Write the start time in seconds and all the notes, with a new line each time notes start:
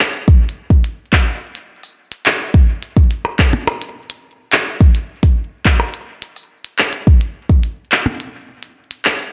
0.13 open hi-hat
0.28 kick
0.49 closed hi-hat
0.70 kick
0.84 closed hi-hat
1.13 kick, clap
1.20 closed hi-hat
1.55 closed hi-hat
1.83 open hi-hat
2.12 closed hi-hat
2.26 clap
2.54 kick, closed hi-hat
2.83 closed hi-hat
2.97 kick
3.11 closed hi-hat
3.25 percussion blips
3.39 kick, clap
3.53 closed hi-hat, percussion blips
3.67 percussion blips
3.82 closed hi-hat
4.10 closed hi-hat
4.52 clap, closed hi-hat
4.67 open hi-hat
4.81 kick
4.95 closed hi-hat
5.23 kick, closed hi-hat
5.65 kick, clap, closed hi-hat
5.80 percussion blips
5.94 closed hi-hat
6.22 closed hi-hat
6.36 open hi-hat
6.65 closed hi-hat
6.79 clap
6.93 closed hi-hat
7.07 kick
7.21 closed hi-hat
7.49 kick
7.63 closed hi-hat
7.92 clap, closed hi-hat
8.06 percussion blips
8.20 closed hi-hat
8.63 closed hi-hat
8.91 closed hi-hat
9.05 clap
9.19 open hi-hat